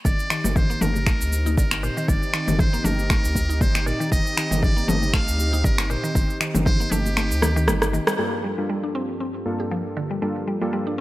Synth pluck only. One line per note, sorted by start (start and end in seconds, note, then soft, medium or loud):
0.05 0.13 D#3 medium
0.30 0.43 D#3 medium
0.44 0.51 D#3 medium
0.56 0.68 D#3 loud
0.70 0.80 A#3 medium
0.81 0.94 A3 loud
1.07 1.14 A3 medium
1.46 1.57 D#4 medium
1.58 1.65 D3 loud
1.83 1.96 A#2 loud
1.97 2.03 D#3 medium
2.08 2.16 D#3 medium
2.34 2.47 D#3 medium
2.48 2.54 D#3 medium
2.59 2.72 D#3 loud
2.73 2.84 A#3 medium
2.85 2.97 A3 loud
3.10 3.18 A3 medium
3.49 3.60 D#4 medium
3.61 3.68 D3 loud
3.86 3.99 A#2 loud
4.00 4.06 D#3 medium
4.12 4.19 D#3 medium
4.37 4.50 D#3 medium
4.51 4.57 D#3 medium
4.63 4.75 D#3 loud
4.76 4.87 A#3 medium
4.88 5.01 A3 loud
5.14 5.21 A3 medium
5.53 5.64 D#4 medium
5.64 5.72 D3 loud
5.90 6.02 A#2 loud
6.04 6.10 D#3 medium
6.15 6.23 D#3 medium
6.41 6.53 D#3 medium
6.55 6.61 D#3 medium
6.66 6.79 D#3 loud
6.80 6.90 A#3 medium
6.91 7.04 A3 loud
7.17 7.24 A3 medium
7.42 7.50 D#3 medium
7.56 7.67 D#3 loud
7.68 7.81 G3 medium
7.93 8.01 D#3 medium
8.07 8.13 G3 medium
8.19 8.26 G3 medium
8.44 8.57 G3 medium
8.58 8.64 G3 medium
8.69 8.82 G3 loud
8.83 8.94 D4 medium
8.95 9.07 C4 loud
9.20 9.28 C4 medium
9.60 9.71 G4 medium
9.71 9.79 F3 loud
9.97 10.09 D3 loud
10.11 10.17 G3 medium
10.22 10.30 G3 medium
10.47 10.60 G3 medium
10.61 10.68 G3 medium
10.73 10.85 G3 loud
10.87 10.97 D4 medium